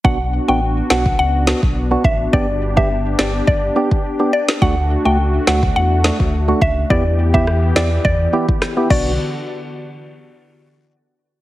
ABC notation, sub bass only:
X:1
M:4/4
L:1/16
Q:1/4=105
K:Bm
V:1 name="Sub bass" clef=bass
B,,,3 A,,,3 B,,,2 C,,3 B,,,3 A,,,2 | G,,,6 G,,,2 G,,,2 z6 | D,,3 C,,3 D,,2 E,,3 D,,3 C,,2 | E,,6 E,,2 E,,2 z4 B,,,2 |
z16 |]